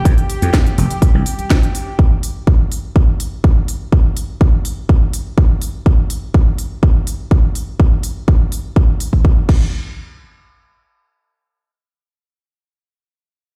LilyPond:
<<
  \new Staff \with { instrumentName = "Violin section" } { \time 4/4 \key f \major \tempo 4 = 124 <g' g''>1 | r1 | r1 | r1 |
r1 | r1 | r1 | }
  \new Staff \with { instrumentName = "Slap bass" } { \clef bass \time 4/4 \key f \major f,16 r8 f,16 r8 f,,16 r8 c,16 r8 f,16 r8. | r1 | r1 | r1 |
r1 | r1 | r1 | }
  \new DrumStaff \with { instrumentName = "Drums" } \drummode { \time 4/4 <hh bd>16 hh16 hho16 hh16 <hh bd sn>16 hh16 hho16 hh16 <hh bd>8 hho16 hh16 <hh bd sn>16 hh16 hho8 | bd8 hho8 bd8 hho8 bd8 hho8 bd8 hho8 | bd8 hho8 bd8 hho8 bd8 hho8 bd8 hho8 | bd8 hho8 bd8 hho8 bd8 hho8 bd8 hho8 |
bd8 hho8 bd8 hho8 bd8 hho16 bd16 bd8 <cymc bd>8 | r4 r4 r4 r4 | r4 r4 r4 r4 | }
>>